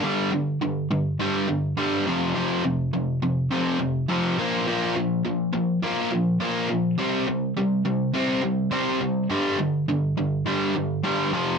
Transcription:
\new Staff \with { instrumentName = "Overdriven electric guitar" } { \clef bass \time 4/4 \key g \minor \tempo 4 = 104 <g, d g>8 <g, d>8 <g, d>8 <g, d>8 <g, d g>8 <g, d>8 <g, d g>8 <f, c f>8 | <f, c f>8 <f, c>8 <f, c>8 <f, c>8 <f, c f>8 <f, c>8 <f, c f>8 <bes, f bes>8 | <bes, f bes>8 <bes, f>8 <bes, f>8 <bes, f>8 <bes, f bes>8 <bes, f>8 <bes, f bes>8 <bes, f>8 | <c g c'>8 <c g>8 <c g>8 <c g>8 <c g c'>8 <c g>8 <c g c'>8 <c g>8 |
<g, d g>8 <g, d>8 <g, d>8 <g, d>8 <g, d g>8 <g, d>8 <g, d g>8 <f, c f>8 | }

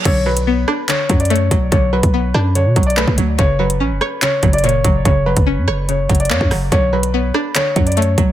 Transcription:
<<
  \new Staff \with { instrumentName = "Grand piano" } { \time 4/4 \key b \minor \tempo 4 = 144 cis''8 b'4. cis''8. d''16 cis''4 | cis''8 b'4. cis''8. d''16 b'8 r8 | cis''8 b'4. cis''8. d''16 cis''4 | cis''8 b'4. cis''8. d''16 cis''8 r8 |
cis''8 b'4. cis''8. d''16 cis''4 | }
  \new Staff \with { instrumentName = "Synth pluck" } { \clef bass \time 4/4 \key b \minor d8 fis8 b8 d'8 d8 fis8 a8 fis8 | d8 fis8 b8 d'8 d8 fis8 a8 fis8 | cis8 fis8 cis'8 cis''8 cis8 fis8 ais,8 fis8 | cis8 fis8 cis'8 cis''8 cis8 fis8 ais8 fis8 |
d8 fis8 b8 d'8 d8 fis8 a8 fis8 | }
  \new Staff \with { instrumentName = "808-style bass" } { \clef bass \time 4/4 \key b \minor b,,4. r4 fis,4 b,,8 | b,,8. b,,8. fis,8. b,16 b,,8. d,16 d,8 | fis,,4 ais,,16 fis,,16 r4 fis,,4 fis,,8 | fis,,8. fis,,8 fis,16 fis,,4 fis,,8 fis,16 fis,16 fis,,8 |
b,,4. r4 fis,4 b,,8 | }
  \new DrumStaff \with { instrumentName = "Drums" } \drummode { \time 4/4 <cymc hh bd>8. hh16 r8 ss8 <hc hh>8 <hh bd>16 hh32 hh32 hh32 hh16. <hh bd>8 | <hh bd>8. <hh bd>16 r8 ss8 \tuplet 3/2 { hh16 r16 r16 <hh bd>16 hh16 hh16 } hc16 bd16 hh8 | <hh bd>8. hh16 r8 ss8 <hc hh>8 <hh bd>16 hh32 hh32 hh32 hh16. <hh bd>8 | <hh bd>8. <hh bd>16 r8 ss8 hh8 <hh bd>32 hh32 hh32 hh32 hc16 bd16 <hho ss>8 |
<hh bd>8. hh16 r8 ss8 <hc hh>8 <hh bd>16 hh32 hh32 hh32 hh16. <hh bd>8 | }
>>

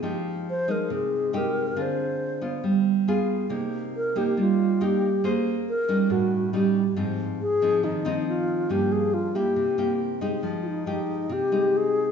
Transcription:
<<
  \new Staff \with { instrumentName = "Alto flute" } { \time 4/4 \key c \phrygian \tempo 4 = 138 r4 c''8 bes'8 aes'4 bes'4 | c''2 r2 | r4 bes'8 g'8 f'4 g'4 | r4 bes'4 ges'4 g'4 |
r4 aes'4 ees'4 f'4 | g'8 aes'8 f'8 g'4. r4 | \key f \minor r16. f'32 ees'8 ees'4 g'4 aes'4 | }
  \new Staff \with { instrumentName = "Nylon-string guitar" } { \time 4/4 \key c \phrygian << { <aes ees' g'>4 r8 <aes ees'>4. <aes ees' g'>4 | <c' f' aes'>4. <ces' f'>4. <b f' aes'>4 | <bes ees' g'>4. <bes ees' g'>4. <bes ees' g'>8 r8 | <des' aes' c''>4. <g des' ees'>4. <g cis' dis'>8 r8 |
<f c' ees'>4 r8 <f c' ees'>4 <f c' ees'>4. | <f bes des'>4. <bes fes' g'>4 <bes e' g'>4 <aes ees' g'>8~ | \key f \minor <aes ees' g'>4 <aes ees' g'>4. <aes ees'>4. | } \\ { f2 c2 | d2 g2 | c2 g2 | bes2 a,2 |
aes,2 ees2 | g,2 c2 | f2 c2 | } >> }
>>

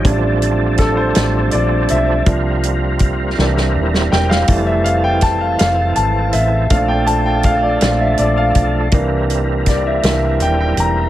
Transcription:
<<
  \new Staff \with { instrumentName = "Grand piano" } { \time 6/8 \key f \major \tempo 4. = 54 r4 a'16 c''8. d''8 e''8~ | e''2 r8 g''16 f''16~ | f''16 e''16 f''16 g''16 a''16 f''16 f''8 a''8 e''8 | f''16 g''16 a''16 g''16 f''16 d''16 f''16 e''16 d''16 f''8.~ |
f''16 r8. d''16 e''16 e''8 g''16 g''16 bes''8 | }
  \new Staff \with { instrumentName = "Grand piano" } { \time 6/8 \key f \major <g a d'>4. <g a d'>8 r4 | <f bes d'>4. <e bes d'>4. | <e g a>2. | <a c' d'>4. <a c' d'>8 r4 |
<e bes d'>4. <e bes d'>8 r4 | }
  \new Staff \with { instrumentName = "Tonewheel organ" } { \time 6/8 \key f \major <f c' d' aes' a'>2. | <g c' f' bes'>4. <g c' e' a' bes'>4. | <e c' a'>2. | <f a d' a'>2. |
<g c' ees' e' bes'>2. | }
  \new Staff \with { instrumentName = "Fingered electric bass" } { \clef bass \time 6/8 \key f \major a,,4. a,,8 bes,,8 b,,8 | c,4. c,8 ees,,8 e,,8 | f,,4. f,,8 aes,,8 a,,8 | bes,,4. bes,,8 bes,,8 b,,8 |
c,4. c,8 ees,,8 e,,8 | }
  \new DrumStaff \with { instrumentName = "Drums" } \drummode { \time 6/8 <hh bd>8 hh8 <hh bd sn>8 <hh sn>8 hh8 hh8 | <hh bd>8 hh8 <hh bd>8 sn16 sn8 sn16 sn16 sn16 | <hh bd>8 hh8 <hh bd sn>8 <hh sn>8 hh8 hh8 | <hh bd>8 hh8 <hh bd>8 <hh sn>8 hh8 <hh bd>8 |
<hh bd>8 hh8 <hh bd sn>8 <hh sn>8 hh8 hh8 | }
>>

